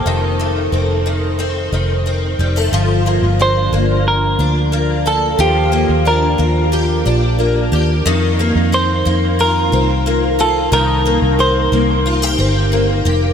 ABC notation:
X:1
M:4/4
L:1/16
Q:1/4=90
K:Gm
V:1 name="Clean electric guitar"
A12 z4 | z4 c4 B6 A2 | G4 B4 z8 | z4 c4 B6 A2 |
B4 c4 z8 |]
V:2 name="Twelve-string acoustic guitar"
E,2 A,2 C2 E,2 C2 E,2 C2 G, A, | F,2 B,2 D2 B,4 D2 B,2 A2 | F,2 B,2 D2 B,2 G2 D2 B,2 G2 | E,2 B,2 C2 B,2 F2 C2 B,2 F2 |
E,2 B,2 C2 B,2 F G C2 B,2 G2 |]
V:3 name="Fingered electric bass" clef=bass
F,,,4 F,,,6 F,,,4 F,,,2 | G,,,3 G,,,3 G,,,4 D,,6 | E,,3 E,,3 E,,4 B,,,4 E,,2 | F,,3 F,,3 F,,4 C,,6 |
C,,3 C,,3 C,,4 G,,,4 F,,,2 |]